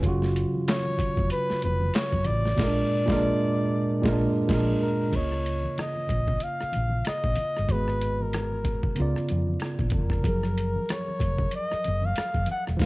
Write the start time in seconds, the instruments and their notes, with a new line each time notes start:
0.01 fretless electric bass F#1, tine electric piano C#3 F#3, kick, closed hi-hat
0.06 tine electric piano F4 F#4
0.22 snare
0.36 closed hi-hat
0.54 high conga
0.68 flugelhorn C#5, snare, clap, closed hi-hat, high conga
0.86 high conga
0.97 muted fretless electric bass stroke, kick, closed hi-hat, muted conga, low conga
1.17 fretless electric bass F1, kick, low conga
1.30 flugelhorn B4, closed hi-hat, muted conga
1.50 muted fretless electric bass stroke, snare
1.62 fretless electric bass F1, flugelhorn B4, closed hi-hat, high conga
1.81 high conga
1.94 flugelhorn C#5, snare, clap, closed hi-hat
2.13 fretless electric bass F#1, kick
2.25 fretless electric bass A1, flugelhorn D5, closed hi-hat, muted conga, high conga
2.46 snare
2.56 fretless electric bass A#1, tine electric piano A#2 G#3, kick, snare, crash
2.63 tine electric piano A#4
2.67 tine electric piano D4
3.05 fretless electric bass A#1, tine electric piano A#2 G#3, kick
3.10 tine electric piano A#4, snare
3.16 tine electric piano D4
4.01 fretless electric bass A#1, tine electric piano A#2 G#3, kick
4.06 tine electric piano A#4, snare
4.12 tine electric piano D4
4.48 fretless electric bass A#1, tine electric piano A#2 G#3, kick, snare, crash
4.54 tine electric piano A#4
4.58 tine electric piano D4
4.82 flugelhorn A#4
5.11 fretless electric bass C#2, tine electric piano C#3 A#3, kick, closed hi-hat, crash, muted conga
5.15 tine electric piano F4 D#5, flugelhorn C#5
5.32 cross-stick
5.46 closed hi-hat
5.63 high conga
5.78 flugelhorn D#5, cross-stick, closed hi-hat, muted conga, high conga
5.95 high conga
6.07 fretless electric bass A#1, kick, closed hi-hat, low conga
6.27 kick, low conga
6.39 closed hi-hat, muted conga
6.43 flugelhorn F5
6.60 muted fretless electric bass stroke, cross-stick
6.72 fretless electric bass A#1, closed hi-hat, high conga
6.89 high conga
7.05 flugelhorn D#5, muted fretless electric bass stroke, cross-stick, closed hi-hat, muted conga
7.24 fretless electric bass A#1, kick
7.35 closed hi-hat, high conga
7.56 fretless electric bass G1, cross-stick
7.67 fretless electric bass G#1, tine electric piano G#3 F#4, kick, closed hi-hat, muted conga
7.71 tine electric piano B3 G#4, flugelhorn B4
7.88 cross-stick
8.01 closed hi-hat
8.19 flugelhorn A#4, high conga
8.33 cross-stick, closed hi-hat, muted conga, high conga
8.52 high conga
8.64 kick, closed hi-hat, muted conga, low conga
8.83 kick, low conga
8.95 tine electric piano C#3 B3, closed hi-hat, muted conga
9.00 fretless electric bass C#2, tine electric piano F4 D5
9.16 cross-stick
9.29 fretless electric bass F2, closed hi-hat, muted conga, high conga
9.47 high conga
9.60 cross-stick, closed hi-hat
9.79 fretless electric bass A#1, kick
9.90 fretless electric bass F1, kick, closed hi-hat, muted conga, high conga
9.95 flugelhorn A#4
10.10 kick, cross-stick
10.23 fretless electric bass F#1, tine electric piano F3 F#3 G#4, kick, closed hi-hat
10.29 tine electric piano A#4
10.43 cross-stick
10.57 closed hi-hat
10.76 high conga
10.89 flugelhorn C#5, cross-stick, closed hi-hat, muted conga, high conga
11.08 high conga
11.19 fretless electric bass F1, kick, closed hi-hat, muted conga, low conga
11.38 kick, low conga
11.51 closed hi-hat
11.56 flugelhorn D#5
11.71 muted fretless electric bass stroke, cross-stick
11.84 fretless electric bass F#1, closed hi-hat, high conga
12.02 flugelhorn F5, high conga
12.16 muted fretless electric bass stroke, cross-stick, closed hi-hat, muted conga
12.34 fretless electric bass F#1, kick
12.46 closed hi-hat, high conga
12.51 flugelhorn F#5
12.67 fretless electric bass E1, cross-stick
12.77 fretless electric bass F1, tine electric piano F3 D#4, kick, crash
12.82 snare